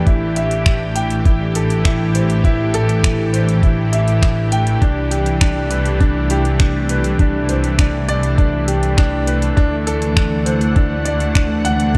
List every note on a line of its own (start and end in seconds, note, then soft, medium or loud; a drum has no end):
0.00 11.98 E3 medium
0.00 4.82 A3 medium
0.00 4.82 D4 medium
0.00 9.57 G4 medium
0.07 4.79 A1 medium
0.07 0.35 E4 medium
0.07 kick loud
0.07 closed hi-hat soft
0.36 0.65 E5 medium
0.36 closed hi-hat medium
0.51 closed hi-hat soft
0.66 0.94 E4 medium
0.66 finger snap medium
0.66 kick loud
0.66 closed hi-hat soft
0.96 1.24 G5 medium
0.96 closed hi-hat medium
1.10 closed hi-hat soft
1.25 1.54 E4 medium
1.25 kick loud
1.25 closed hi-hat soft
1.55 1.72 A4 medium
1.55 closed hi-hat medium
1.70 closed hi-hat soft
1.85 2.13 E4 medium
1.85 finger snap loud
1.85 kick loud
1.85 closed hi-hat soft
2.15 2.43 C5 medium
2.15 closed hi-hat medium
2.30 closed hi-hat soft
2.44 2.61 E4 loud
2.44 kick loud
2.44 closed hi-hat soft
2.74 3.02 A4 loud
2.74 closed hi-hat medium
2.89 closed hi-hat soft
3.04 3.21 E4 medium
3.04 finger snap medium
3.04 kick loud
3.04 closed hi-hat soft
3.33 3.62 C5 medium
3.33 closed hi-hat medium
3.49 closed hi-hat soft
3.63 3.91 E4 medium
3.63 kick loud
3.63 closed hi-hat soft
3.93 4.21 E5 medium
3.93 closed hi-hat medium
4.08 closed hi-hat soft
4.22 4.51 E4 medium
4.22 finger snap medium
4.22 kick loud
4.22 closed hi-hat soft
4.52 4.80 G5 loud
4.52 closed hi-hat medium
4.67 closed hi-hat soft
4.81 9.54 C2 medium
4.81 5.10 D4 medium
4.81 kick loud
4.81 closed hi-hat soft
5.11 5.28 G4 medium
5.11 closed hi-hat medium
5.26 closed hi-hat soft
5.37 11.98 A3 medium
5.41 5.69 D4 medium
5.41 finger snap loud
5.41 kick loud
5.41 closed hi-hat soft
5.49 11.98 D4 medium
5.71 5.99 B4 medium
5.71 closed hi-hat medium
5.86 closed hi-hat soft
6.00 6.17 D4 loud
6.00 kick loud
6.00 closed hi-hat soft
6.30 6.59 G4 loud
6.30 closed hi-hat medium
6.45 closed hi-hat soft
6.60 6.77 D4 medium
6.60 finger snap medium
6.60 kick loud
6.60 closed hi-hat soft
6.89 7.18 B4 medium
6.89 closed hi-hat medium
7.04 closed hi-hat soft
7.19 7.48 D4 medium
7.19 kick loud
7.19 closed hi-hat soft
7.49 7.77 C5 medium
7.49 closed hi-hat medium
7.64 closed hi-hat soft
7.79 8.07 D4 medium
7.79 finger snap medium
7.79 kick loud
7.79 closed hi-hat soft
8.09 8.37 D5 loud
8.09 closed hi-hat medium
8.23 closed hi-hat soft
8.38 8.66 D4 medium
8.38 kick loud
8.38 closed hi-hat soft
8.68 8.85 G4 medium
8.68 closed hi-hat medium
8.83 closed hi-hat soft
8.97 9.26 D4 loud
8.97 finger snap medium
8.97 kick loud
8.97 closed hi-hat soft
9.27 9.55 B4 medium
9.27 closed hi-hat medium
9.42 closed hi-hat soft
9.57 11.98 D2 medium
9.57 9.74 D4 loud
9.57 kick loud
9.57 closed hi-hat soft
9.87 10.15 A4 loud
9.87 closed hi-hat medium
10.02 closed hi-hat soft
10.09 11.98 F#5 medium
10.16 10.33 D4 medium
10.16 finger snap medium
10.16 kick medium
10.16 closed hi-hat soft
10.46 10.74 C5 medium
10.46 closed hi-hat medium
10.61 closed hi-hat soft
10.76 11.04 D4 medium
10.76 kick loud
10.76 closed hi-hat soft
11.05 11.34 D5 medium
11.05 closed hi-hat medium
11.20 closed hi-hat soft
11.35 11.63 D4 medium
11.35 finger snap medium
11.35 kick loud
11.35 closed hi-hat soft
11.65 11.93 F#5 loud
11.65 closed hi-hat medium
11.80 closed hi-hat soft
11.95 closed hi-hat soft